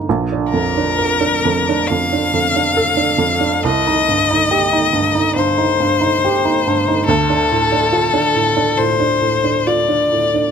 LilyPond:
<<
  \new Staff \with { instrumentName = "Violin" } { \time 4/4 \key c \dorian \tempo 4 = 69 r8 bes'4. f''2 | ees''2 c''2 | a'2 c''4 d''4 | }
  \new Staff \with { instrumentName = "Upright piano" } { \time 4/4 \key c \dorian bes,,16 d'16 f,16 d'16 bes'16 d'16 f,16 d'16 f,16 d'16 f,16 d'16 a'16 d'16 f,16 d'16 | c,16 ees'16 g,16 ees'16 g'16 ees'16 g,16 ees'16 g,16 ees'16 g,16 ees'16 g'16 ees'16 g,16 ees'16 | d,16 d'16 a,16 d'16 f'16 d'16 a,16 d'16 a,16 d'16 a,16 d'16 f'16 d'16 a,16 d'16 | }
>>